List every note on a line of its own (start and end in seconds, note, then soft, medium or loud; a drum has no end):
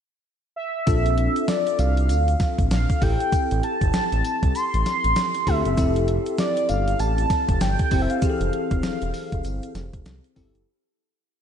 0.56 1.50 E5 loud
0.87 1.29 A#1 loud
0.87 1.75 C4 medium
0.87 1.76 D4 medium
0.87 1.76 F4 medium
0.87 1.76 A4 loud
0.87 kick loud
0.87 closed hi-hat medium
0.87 tambourine medium
0.87 shaker medium
1.06 closed hi-hat medium
1.06 shaker soft
1.18 closed hi-hat medium
1.36 closed hi-hat medium
1.36 shaker medium
1.48 1.81 D5 loud
1.48 snare loud
1.48 closed hi-hat medium
1.48 tambourine medium
1.48 shaker medium
1.67 closed hi-hat medium
1.67 shaker medium
1.79 2.11 C2 loud
1.79 2.41 F5 loud
1.79 closed hi-hat medium
1.79 tambourine medium
1.97 closed hi-hat medium
1.97 shaker soft
2.09 2.36 D2 loud
2.09 closed hi-hat medium
2.09 tambourine medium
2.09 shaker medium
2.28 closed hi-hat soft
2.28 shaker medium
2.40 kick loud
2.40 snare medium
2.40 closed hi-hat medium
2.40 tambourine medium
2.40 shaker medium
2.59 2.69 A1 medium
2.59 kick loud
2.59 closed hi-hat medium
2.59 shaker soft
2.71 2.87 A#1 medium
2.71 3.04 F5 medium
2.71 snare loud
2.71 closed hi-hat medium
2.71 tambourine loud
2.71 shaker medium
2.90 kick medium
2.90 closed hi-hat medium
2.90 shaker medium
3.01 3.17 A1 loud
3.01 4.01 C4 medium
3.01 4.01 E4 medium
3.01 4.01 G4 medium
3.01 4.01 A4 medium
3.01 3.64 G5 loud
3.01 kick medium
3.01 open hi-hat medium
3.01 tambourine medium
3.20 closed hi-hat medium
3.20 shaker medium
3.32 kick loud
3.32 closed hi-hat medium
3.32 tambourine medium
3.32 shaker medium
3.51 3.62 A1 loud
3.51 closed hi-hat medium
3.51 shaker medium
3.63 4.56 A5 loud
3.63 closed hi-hat medium
3.81 3.92 G1 loud
3.81 kick loud
3.81 closed hi-hat medium
3.81 shaker medium
3.93 4.01 A1 soft
3.93 snare loud
3.93 closed hi-hat medium
3.93 tambourine medium
3.93 shaker medium
4.12 4.23 A1 medium
4.12 closed hi-hat medium
4.12 shaker medium
4.25 closed hi-hat medium
4.25 tambourine medium
4.43 4.53 C2 medium
4.43 kick medium
4.43 closed hi-hat medium
4.43 shaker soft
4.55 5.49 C6 loud
4.55 closed hi-hat medium
4.55 tambourine medium
4.55 shaker medium
4.74 4.84 A1 medium
4.74 closed hi-hat medium
4.74 shaker medium
4.85 snare medium
4.85 closed hi-hat medium
4.85 tambourine medium
4.85 shaker medium
5.04 5.14 A1 medium
5.04 closed hi-hat medium
5.04 shaker soft
5.16 snare loud
5.16 closed hi-hat medium
5.16 tambourine loud
5.16 shaker medium
5.34 closed hi-hat medium
5.34 shaker medium
5.47 5.62 D2 loud
5.47 5.71 C4 medium
5.47 5.71 E4 medium
5.47 5.71 G4 medium
5.47 5.71 A4 medium
5.47 6.08 E5 loud
5.47 kick medium
5.47 open hi-hat medium
5.47 tambourine medium
5.65 5.76 F#1 medium
5.65 closed hi-hat medium
5.65 shaker soft
5.77 6.19 F1 loud
5.77 6.66 C4 medium
5.77 6.66 E4 medium
5.77 6.66 G4 medium
5.77 6.66 A4 medium
5.77 kick loud
5.77 closed hi-hat medium
5.77 tambourine medium
5.77 shaker medium
5.96 closed hi-hat medium
5.96 shaker medium
6.08 closed hi-hat medium
6.26 closed hi-hat medium
6.26 shaker medium
6.38 6.71 D5 loud
6.38 snare loud
6.38 closed hi-hat medium
6.38 tambourine medium
6.38 shaker medium
6.57 closed hi-hat medium
6.57 shaker soft
6.69 6.95 G1 loud
6.69 7.01 F5 loud
6.69 closed hi-hat medium
6.69 tambourine medium
6.88 closed hi-hat medium
6.88 shaker soft
6.99 7.26 A1 loud
6.99 7.63 A5 loud
6.99 closed hi-hat medium
6.99 tambourine medium
6.99 shaker medium
7.18 closed hi-hat medium
7.18 shaker medium
7.30 kick medium
7.30 snare medium
7.30 closed hi-hat medium
7.30 tambourine medium
7.30 shaker medium
7.49 7.59 F1 medium
7.49 kick medium
7.49 closed hi-hat medium
7.49 shaker soft
7.61 7.76 G1 medium
7.61 8.03 G5 loud
7.61 snare loud
7.61 closed hi-hat medium
7.61 tambourine loud
7.61 shaker medium
7.79 kick medium
7.79 closed hi-hat medium
7.79 shaker soft
7.91 8.07 F#1 loud
7.91 8.15 C4 medium
7.91 8.15 E4 medium
7.91 8.16 G4 medium
7.91 8.16 C5 medium
7.91 kick medium
7.91 open hi-hat medium
7.91 tambourine medium
8.02 8.12 E5 medium
8.10 10.06 F5 loud
8.10 closed hi-hat medium
8.10 shaker medium
8.22 9.11 E3 medium
8.22 9.10 C4 medium
8.22 9.11 G4 medium
8.22 8.30 G#4 medium
8.22 kick loud
8.22 closed hi-hat medium
8.22 tambourine medium
8.22 shaker medium
8.30 9.14 A4 medium
8.40 8.51 F1 loud
8.40 closed hi-hat medium
8.40 shaker medium
8.53 closed hi-hat medium
8.71 8.82 F1 medium
8.71 kick loud
8.71 closed hi-hat medium
8.71 shaker medium
8.83 8.91 E1 soft
8.83 snare loud
8.83 closed hi-hat medium
8.83 tambourine medium
8.83 shaker medium
9.01 9.12 E1 loud
9.01 closed hi-hat medium
9.01 shaker medium
9.14 open hi-hat medium
9.14 tambourine medium
9.32 9.43 F1 medium
9.32 kick medium
9.32 closed hi-hat medium
9.32 shaker soft
9.44 9.60 G1 medium
9.44 closed hi-hat medium
9.44 tambourine medium
9.44 shaker medium
9.63 closed hi-hat medium
9.63 shaker medium
9.75 9.91 F1 loud
9.75 snare medium
9.75 closed hi-hat medium
9.75 tambourine medium
9.75 shaker medium
9.93 10.04 F1 medium
9.93 kick loud
9.93 closed hi-hat medium
9.93 shaker soft
10.05 10.21 C2 medium
10.05 snare loud
10.05 closed hi-hat medium
10.05 tambourine loud
10.05 shaker medium
10.24 closed hi-hat soft
10.24 shaker medium
10.36 10.52 G1 medium
10.36 10.60 C4 medium
10.36 10.60 E4 medium
10.36 10.60 G4 medium
10.36 10.60 A4 loud
10.36 kick medium
10.36 open hi-hat medium
10.36 tambourine medium
10.55 10.65 F#1 loud
10.55 closed hi-hat medium
10.55 shaker soft